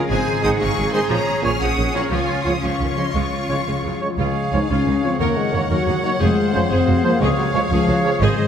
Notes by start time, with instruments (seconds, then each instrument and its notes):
Already playing: harp C#3 F3 G#3 C#4 G#4, viola section C#4, oboe C#5
0.09 double bass section G#1, harp G#2, viola section G#3 C4, violin section D#4 G#4 G#5, cello section G#4, flute section C5
0.27 harp D#3
0.42 double bass section G#1, trombone section D#3 G#3, harp G#3, viola section G#3, french horn section C4 D#4, clarinet D#4, trumpet G#4, oboe C5, flute section F#5, violin section D#6
0.60 double bass section G#1, viola section G#3, harp C4, flute section F5, violin section C#6
0.77 double bass section G#1, viola section F#3, harp G#4
0.93 trombone section D#3 G#3, french horn section C4 D#4, clarinet D#4, trumpet G#4, oboe C5, flute section D#5, violin section C6
1.09 double bass section A#1, harp A#2, viola section F3 C#4, violin section C#4 C#5 A#5, flute section C#5
1.28 harp A#3
1.43 double bass section A#1, trombone section A#2 F3, viola section F3, harp F3, french horn section C#4 F4, clarinet F4, trumpet C#5, oboe C#5, flute section G#5, violin section F6
1.60 double bass section A#1, viola section F3, harp C#4, flute section F#5, violin section D#6
1.77 double bass section A#1, viola section D#3, harp C#5
1.94 trombone section A#2 F3, harp C#4, french horn section C#4 F4, clarinet F4, flute section A#4, trumpet C#5, oboe C#5, violin section F#5
2.11 double bass section C#2, harp C#3, viola section F3, cello section F4, violin section F4 G#5, flute section C#5
2.29 harp F3
2.44 double bass section C#2, trombone section C#3 F3, viola section F3, harp C#4, french horn section C#4 F4, clarinet F4, oboe C#5, trumpet C#5, flute section F#5, violin section D#6
2.62 double bass section C#2, viola section F3, cello section C#4, harp C#5, flute section F5, violin section C#6
2.80 double bass section C#2, viola section D#3, harp F4
2.96 trombone section C#3 F3, french horn section C#4 F4, clarinet F4, harp C#5, trumpet C#5, oboe C#5, flute section D#5, violin section C6
3.13 double bass section C#2, harp C#3, viola section G#3 C#4, cello section F4, violin section C#5 C#6, flute section F5
3.31 harp F3
3.49 double bass section C#2, trombone section C#3 G#3, viola section G#3, french horn section C#4 F4, harp C#4, clarinet F4, oboe C#5, trumpet C#5
3.66 double bass section C#2, viola section G#3, clarinet F4, harp C#5
3.83 double bass section C#2, viola section F#3, harp F4, clarinet G#4
4.01 trombone section C#3 G#3, french horn section F#3 C#4 F4, clarinet F4, trumpet C#5, oboe C#5, harp C#5
4.17 double bass section C#2, cello section C#2, harp C#3, french horn section G#3, viola section F4, violin section G#4 F5, clarinet G#4, oboe C#5, flute section F5
4.36 harp C#4
4.52 double bass section C#2, cello section C#2, trombone section C#3 F3, harp F3, french horn section D#4, viola section F4, trumpet C#5
4.70 cello section C#2, double bass section C#2, french horn section C#4, harp F4, viola section F4, clarinet G#4, oboe C#5, flute section F5
4.86 cello section C#2, double bass section C#2, viola section D#4
5.03 trombone section C#3 F3, french horn section C4, harp F4, trumpet C#5
5.19 cello section D#2, double bass section D#2, harp D#3, french horn section A#3, viola section A#4, clarinet A#4, oboe C#5, violin section C#5 F#5, flute section F#5
5.36 french horn section G#3, harp A#3
5.53 double bass section D#2, cello section D#2, trombone section D#3 A#3, french horn section A#3, harp D#4, viola section A#4, trumpet C#5
5.69 cello section D#2, double bass section D#2, french horn section F#3, clarinet A#4, viola section A#4, harp C#5, oboe C#5, flute section F#5
5.87 cello section D#2, double bass section D#2, viola section G#4, harp A#4
6.03 trombone section D#3 A#3, french horn section F#3, harp C#5, trumpet C#5
6.20 double bass section F1, cello section F2, harp F3, french horn section G#3, clarinet G#4, viola section G#4, oboe C5, violin section C5, flute section F5
6.38 harp F4
6.54 double bass section F1, cello section F2, trombone section F3 G#3, harp G#3, french horn section C#4, viola section G#4, trumpet C5
6.69 double bass section F1, cello section F2, french horn section C4, harp G#4, viola section G#4, clarinet G#4, oboe C5, flute section F5
6.87 double bass section F1, cello section F2, viola section F#4
7.03 trombone section F3 G#3, french horn section A#3, harp G#4, trumpet C5
7.20 double bass section C#2, cello section C#2, harp C#3, french horn section G#3, clarinet G#4, viola section G#4, oboe C#5, violin section C#5 F5, flute section F5
7.37 french horn section F#3, harp C#4
7.53 double bass section C#2, cello section C#2, trombone section F3 G#3, french horn section G#3, viola section G#4, trumpet C#5
7.70 double bass section C#2, cello section C#2, french horn section F3, viola section G#4, clarinet G#4, oboe C#5, flute section F5
7.88 double bass section C#2, cello section C#2, viola section F#4, harp C#5
8.04 trombone section F3 G#3, harp G#4, trumpet C#5
8.20 double bass section G#1, cello section G#2, harp G#2, french horn section G#3, clarinet G#4, viola section G#4, violin section C5 D#5, oboe C5, flute section D#5
8.38 harp D#3